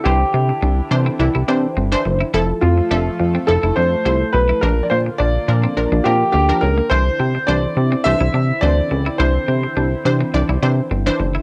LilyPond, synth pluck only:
\new Staff \with { instrumentName = "Synth pluck" } { \time 4/4 \key c \major \tempo 4 = 105 <e d' c''>4~ <e d' c''>16 r16 <e d' c''>8 <e d' e'>8 <e d' c''>8 r16 <e d' c''>8 r16 | <f e' a'>8. r16 <f a' e''>8. r16 <f e' a'>8. r16 <f e' c''>8. r16 | <f d' bes'>4~ <f d' bes'>16 r16 <f d' bes'>8 <f d' bes'>8 <f d' bes'>8 r16 <f d' bes'>8 r16 | <e d' c''>8. r16 <e d' c''>8. r16 <e d' c''>8. r16 <e d' c''>8. r16 |
<e d' c''>4~ <e d' c''>16 r16 <e d' c''>8 <e d' d''>8 <e d' c''>8 r16 <e d' c''>8 r16 | }